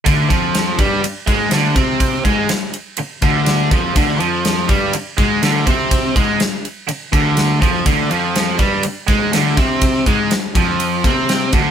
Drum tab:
RD |xxxxxxxx|xxxxxxxx|xxxxxxxx|xxxxxxxx|
SD |--o---o-|--o---o-|--o---o-|--o---o-|
BD |oo-o-o-o|oo---o-o|o--o-o-o|oo---o-o|

RD |xxxxxxxx|xxxxxxxx|
SD |--o---o-|--o---o-|
BD |o--o-o-o|oo-o-o-o|